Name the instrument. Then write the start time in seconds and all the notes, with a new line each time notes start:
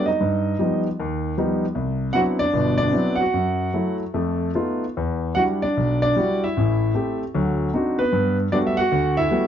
grand piano
0.06 D#4 D#5
0.21 G2
0.59 F3 G3 B3 D#4
1.00 D#2
1.37 F3 G3 B3 D#4
1.75 C2
2.13 F#3 B3 C4 D4 E4 F#4 F#5
2.39 D4 D5
2.53 G1 B2
2.78 D4 D5
2.92 F#3 B3 C4 D4 E4
3.16 F#5
3.20 F#4
3.34 F#2
3.74 F#3 A3 E4
4.14 F2 A3
4.55 A3 B3 D#4 F4
4.97 E2
5.35 G3 D4 E4 F#4 F#5
5.62 D4 D5
5.77 B1
6.02 D4 D5
6.16 G3 D4 E4 F#4
6.44 E4 E5
6.57 A1 A2
6.95 A3 C4 G4
7.35 D2 F#3
7.74 C4 D4 D#4 F#4
7.99 B3 B4
8.13 G2
8.52 G3 A3 B3 D4 F#4 D5
8.67 E5
8.77 F#4 F#5
8.92 D2
9.17 E4 E5
9.31 G3 A3 B3 F#4